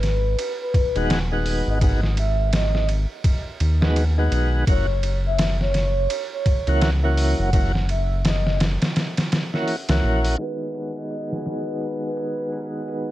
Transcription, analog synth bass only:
0.00 0.36 G#1 medium
0.95 1.63 D#1 medium
1.67 3.06 G#1 loud
3.61 4.29 D#2 medium
4.32 4.64 B1 medium
4.67 6.07 F#1 medium
6.67 7.35 C#2 medium
7.39 8.78 F#1 loud
9.89 10.02 C#2 medium
10.03 10.35 A#1 loud

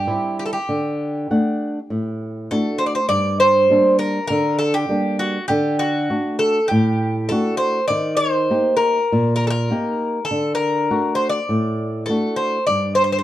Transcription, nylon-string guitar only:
0.07 0.56 G3 soft
0.07 0.56 C4 soft
0.07 0.56 E4 medium
0.69 1.27 D3 medium
1.31 1.78 A3 soft
1.31 1.78 D4 soft
1.31 1.78 F#5 soft
1.90 2.48 A2 medium
2.51 2.98 A3 soft
2.51 2.99 D4 soft
2.51 2.99 F#4 medium
3.09 3.67 G2 medium
3.70 4.18 G3 soft
3.70 4.18 A#3 soft
3.70 4.19 D4 medium
4.30 4.88 D3 medium
4.89 5.37 G3 soft
4.89 5.37 A#3 soft
4.89 5.38 D4 medium
5.50 6.08 D3 medium
6.10 6.58 A3 soft
6.10 6.58 D4 soft
6.10 6.58 F#4 medium
6.71 7.29 A2 medium
7.31 7.78 A3 soft
7.31 7.79 D4 soft
7.31 7.79 F#4 medium
7.90 8.48 D#3 medium
8.50 8.98 A#3 soft
8.50 8.98 D#4 soft
8.50 8.98 G4 medium
9.12 9.69 A#2 medium
9.70 10.18 A#3 soft
9.70 10.18 D#4 soft
9.70 10.19 G4 medium
10.31 10.88 D3 medium
10.90 11.38 A3 soft
10.90 11.38 D4 soft
10.90 11.38 F#4 medium
11.49 12.07 A2 medium
12.09 12.57 A3 soft
12.09 12.57 D4 soft
12.09 12.57 F#4 soft
12.68 13.23 G2 medium

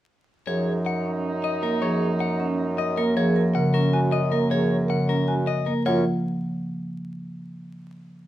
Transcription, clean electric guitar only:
0.47 0.72 C#5 medium
0.86 1.11 F#5 soft
1.44 1.69 D#5 medium
1.63 1.88 A#4 medium
1.82 2.07 C#5 medium
2.20 2.45 F#5 medium
2.78 3.03 D#5 medium
2.97 3.16 A#4 medium
3.17 3.42 C#5 medium
3.55 3.80 F#5 medium
3.74 3.99 A#4 medium
4.12 4.38 D#5 medium
4.31 4.51 A#4 medium
4.51 4.76 C#5 medium
4.90 5.15 F#5 medium
5.09 5.34 A#4 medium
5.47 5.72 D#5 medium
5.66 5.86 A#4 soft
5.86 6.04 C#5 medium

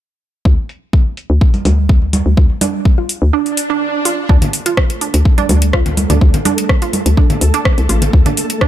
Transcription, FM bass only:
0.45 0.56 D2 medium
1.30 1.39 D2 medium
1.65 2.22 D2 loud
2.26 2.35 D2 medium
2.37 2.48 D2 medium
3.22 3.31 D2 medium
4.29 4.40 D2 loud
5.14 5.23 D2 medium
5.49 6.06 D2 loud
6.10 6.19 D2 medium
6.21 6.32 D2 loud
7.06 7.15 D2 medium
7.41 7.52 D2 medium
7.78 7.87 C2 medium
7.89 8.09 A1 medium
8.13 8.24 D2 medium

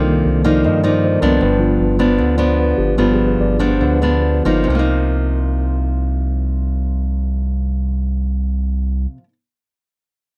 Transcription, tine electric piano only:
0.00 0.06 D#3 soft
0.00 0.06 F3 soft
0.00 0.07 A#3 soft
0.00 1.43 D4 soft
0.00 1.43 A4 medium
0.00 1.21 A#4 medium
0.00 0.45 D5 medium
0.00 0.66 D#5 medium
0.06 1.37 D#3 soft
0.06 1.37 F3 soft
0.06 1.37 A#3 soft
0.45 0.63 D5 medium
0.66 0.84 D#5 medium
0.83 1.02 D5 medium
1.05 1.22 C5 medium
1.21 1.40 A#4 medium
1.42 1.60 B4 medium
1.58 1.85 F3 soft
1.58 1.85 B3 soft
1.58 1.86 D4 soft
1.58 1.72 F4 medium
2.38 2.57 D5 medium
2.60 2.78 B4 soft
2.77 2.97 G4 medium
2.97 3.24 F3 soft
2.97 3.25 B3 soft
2.97 3.25 D4 soft
2.97 3.12 F4 soft
3.13 3.25 G#4 soft
3.27 3.39 B4 medium
3.41 3.60 D5 medium
3.61 3.81 C5 medium
3.84 4.54 B4 medium

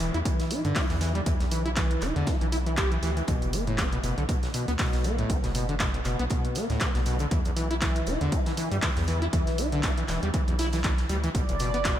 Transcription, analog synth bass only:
0.00 0.11 E1 medium
0.14 0.22 E2 loud
0.65 0.73 G2 medium
0.90 1.22 E2 loud
1.26 1.37 E2 loud
1.40 1.97 B1 medium
2.02 2.12 E1 medium
2.16 2.24 E2 medium
2.41 2.98 B1 loud
3.03 3.22 D2 medium
3.28 3.38 B1 medium
3.42 3.99 F#1 medium
4.04 4.14 F#1 medium
4.18 4.26 B1 medium
4.68 4.76 D2 medium
4.93 5.25 B1 medium
5.30 5.40 B1 loud
5.44 6.01 F#1 medium
6.05 6.16 F#1 medium
6.19 6.28 B1 loud
6.70 6.78 D2 medium
6.95 7.27 B1 loud
7.31 7.42 E2 loud
7.45 8.02 B1 medium
8.07 8.17 E1 medium
8.21 8.29 E2 medium
8.72 8.80 G2 medium
8.97 9.28 E2 loud
9.33 9.43 E2 loud
9.47 10.04 B1 medium
10.09 10.19 E1 medium
10.23 10.31 E2 medium
10.48 11.05 B1 loud
11.09 11.29 D2 medium
11.35 11.45 B1 loud
11.49 11.99 F#1 medium

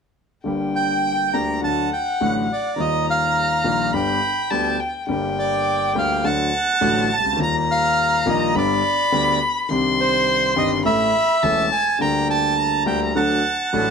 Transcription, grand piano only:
0.44 1.29 G1 medium
0.44 1.29 G2 medium
0.44 1.28 D3 soft
0.44 1.29 G3 soft
0.44 1.29 A#3 soft
0.44 1.30 G4 medium
1.34 1.58 D2 medium
1.34 1.58 D3 medium
1.34 1.58 G3 soft
1.34 1.58 A#3 medium
1.34 1.58 G4 medium
1.62 1.87 D2 medium
1.62 1.87 D3 medium
1.62 1.87 F#3 soft
1.62 1.87 A3 medium
1.62 1.87 F#4 medium
2.21 2.45 A1 medium
2.21 2.45 A2 medium
2.21 2.45 D3 medium
2.21 2.45 F#3 medium
2.21 2.45 A3 medium
2.21 2.45 F#4 medium
2.76 3.60 D#2 medium
2.76 2.77 D#3 soft
2.76 3.60 D#3 medium
2.76 3.60 G3 soft
2.76 3.61 A#3 soft
2.80 3.61 F4 medium
3.64 3.89 A#1 medium
3.64 3.89 A#2 medium
3.64 3.89 D#3 medium
3.64 3.89 G3 medium
3.64 3.89 A#3 medium
3.64 3.89 F4 medium
3.94 4.18 G1 medium
3.94 4.18 G2 medium
3.94 4.18 D3 medium
3.94 4.18 G3 soft
3.94 4.18 B3 soft
3.94 4.18 G4 medium
4.51 4.76 D2 medium
4.51 4.76 D3 medium
4.51 4.76 G3 medium
4.51 4.76 B3 medium
4.51 4.76 G4 medium
5.07 5.92 G1 medium
5.07 5.92 G2 medium
5.07 5.91 D3 medium
5.07 5.91 G3 medium
5.07 5.92 A#3 soft
5.11 5.93 G4 medium
5.95 6.20 D2 medium
5.95 6.20 D3 medium
5.95 6.20 G3 medium
5.95 6.20 A#3 medium
5.95 6.20 G4 medium
6.24 6.49 D2 medium
6.24 6.49 D3 medium
6.24 6.49 F#3 medium
6.24 6.49 A3 medium
6.24 6.49 F#4 medium
6.81 7.06 A1 medium
6.81 7.06 A2 medium
6.81 7.06 D3 medium
6.81 7.06 F#3 medium
6.81 7.06 A3 medium
6.81 7.07 F#4 medium
7.18 7.26 C2 soft
7.25 7.33 C#2 medium
7.32 7.40 D2 medium
7.37 8.22 D#2 medium
7.37 8.21 D#3 medium
7.37 8.21 G3 soft
7.37 8.22 A#3 medium
7.37 8.22 F4 medium
8.26 8.51 A#1 medium
8.26 8.51 A#2 medium
8.26 8.51 D#3 medium
8.26 8.51 G3 medium
8.26 8.51 A#3 medium
8.26 8.51 F4 medium
8.55 8.80 G1 medium
8.55 8.80 G2 medium
8.55 8.79 D3 medium
8.55 8.80 G3 medium
8.55 8.80 B3 medium
8.55 8.80 G4 medium
9.12 9.37 D2 medium
9.12 9.37 D3 medium
9.12 9.37 G3 medium
9.12 9.37 B3 medium
9.12 9.37 G4 medium
9.69 10.53 C2 medium
9.69 10.53 C3 medium
9.69 10.52 D#3 medium
9.69 10.52 C4 medium
9.69 10.53 D4 medium
9.69 10.54 G4 medium
10.56 10.81 G1 medium
10.56 10.81 G2 medium
10.56 10.81 D#3 medium
10.56 10.81 C4 medium
10.56 10.81 D4 medium
10.56 10.81 G4 medium
10.85 11.10 A1 medium
10.85 11.10 A2 medium
10.85 11.09 E3 medium
10.85 11.10 A3 medium
10.85 11.10 C#4 medium
10.85 11.10 A4 medium
11.43 11.67 E1 medium
11.43 11.67 E2 medium
11.43 11.67 E3 medium
11.43 11.67 A3 medium
11.43 11.68 C#4 medium
11.43 11.68 A4 medium
11.99 12.83 D2 medium
11.99 12.00 D3 medium
11.99 12.83 D3 medium
11.99 12.82 G3 medium
11.99 12.83 A#3 medium
11.99 12.84 G4 medium
12.86 13.11 D2 medium
12.86 13.11 D3 medium
12.86 13.11 G3 medium
12.86 13.11 A#3 medium
12.86 13.11 G4 medium
13.15 13.40 D2 medium
13.15 13.40 D3 medium
13.15 13.40 F#3 medium
13.15 13.40 A3 medium
13.15 13.40 D4 medium
13.15 13.40 A4 medium
13.73 13.90 A1 medium
13.73 13.90 A2 medium
13.73 13.90 F#3 medium
13.73 13.90 A3 medium
13.73 13.90 D4 medium
13.73 13.90 A4 medium

